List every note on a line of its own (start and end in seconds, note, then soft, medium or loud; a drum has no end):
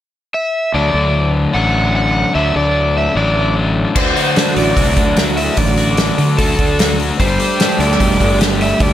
0.34 0.74 E5 medium
0.74 0.92 D2 medium
0.74 1.53 D3 medium
0.74 1.54 F#3 medium
0.74 1.55 A3 medium
0.74 1.55 D4 medium
0.74 1.31 D5 medium
0.94 1.46 D2 medium
1.53 2.23 A1 medium
1.53 2.33 D3 medium
1.53 2.34 F#3 medium
1.53 2.35 A3 medium
1.53 2.35 D4 medium
1.53 1.94 F#5 medium
1.96 2.34 F#5 medium
2.34 2.53 D2 medium
2.34 3.14 D3 medium
2.34 3.14 F#3 medium
2.34 3.15 A3 medium
2.34 3.15 D4 medium
2.34 2.54 E5 medium
2.56 3.07 D2 medium
2.56 2.97 D5 medium
2.98 3.17 E5 medium
3.15 3.84 A1 medium
3.15 3.95 D3 medium
3.15 3.95 F#3 medium
3.15 3.96 A3 medium
3.15 3.96 D4 medium
3.15 3.54 D5 medium
3.94 4.13 D2 medium
3.94 7.18 D3 medium
3.94 4.97 D3 medium
3.94 7.18 F#3 medium
3.94 7.19 A3 medium
3.94 7.21 D4 medium
3.94 7.20 F#4 medium
3.94 4.53 C5 medium
3.94 kick medium
3.94 crash medium
4.15 4.75 F#4 medium
4.15 open hi-hat soft
4.36 4.97 D4 medium
4.36 snare medium
4.36 open hi-hat medium
4.56 4.74 A1 medium
4.56 5.37 A3 medium
4.56 5.37 D5 medium
4.56 open hi-hat soft
4.76 4.94 C2 medium
4.76 5.16 F#4 medium
4.76 kick medium
4.76 open hi-hat medium
4.97 5.49 D2 medium
4.97 5.98 D4 medium
4.97 kick medium
4.97 open hi-hat medium
5.17 5.76 F#4 medium
5.17 snare loud
5.17 open hi-hat medium
5.37 6.18 A3 medium
5.37 5.58 E5 medium
5.37 open hi-hat soft
5.57 6.10 A1 medium
5.57 6.58 D3 medium
5.57 6.41 D5 medium
5.57 kick loud
5.57 open hi-hat medium
5.77 6.38 F#4 medium
5.77 open hi-hat soft
5.97 6.60 D4 medium
5.97 snare loud
5.97 open hi-hat medium
6.18 6.36 D3 medium
6.18 6.98 A3 medium
6.18 open hi-hat soft
6.38 6.56 D2 medium
6.38 6.78 F#4 medium
6.38 6.95 A4 medium
6.38 kick medium
6.38 open hi-hat medium
6.59 7.10 D2 medium
6.59 7.59 D4 medium
6.59 kick medium
6.59 open hi-hat soft
6.79 7.20 F#4 medium
6.79 snare loud
6.79 open hi-hat medium
6.99 7.22 A3 medium
6.99 open hi-hat soft
7.19 7.37 G1 medium
7.19 8.93 G3 medium
7.19 8.64 G3 medium
7.19 8.93 A3 medium
7.19 8.93 D4 medium
7.19 8.93 G4 medium
7.19 7.76 C5 medium
7.19 kick medium
7.19 open hi-hat medium
7.40 8.00 G4 medium
7.40 open hi-hat soft
7.60 8.20 D4 medium
7.60 snare loud
7.60 open hi-hat medium
7.79 7.96 D2 medium
7.79 8.59 A3 medium
7.79 8.37 D5 medium
7.79 open hi-hat soft
7.92 snare soft
8.00 8.18 E1 medium
8.00 8.40 G4 medium
8.00 kick medium
8.00 open hi-hat medium
8.20 8.72 G1 medium
8.20 8.93 D4 medium
8.20 kick medium
8.20 open hi-hat medium
8.41 8.93 G4 medium
8.41 snare loud
8.41 open hi-hat medium
8.61 8.93 A3 medium
8.61 8.80 E5 medium
8.61 open hi-hat soft
8.80 8.93 D2 medium
8.80 8.93 G3 medium
8.80 8.93 D5 medium
8.80 kick loud
8.80 open hi-hat medium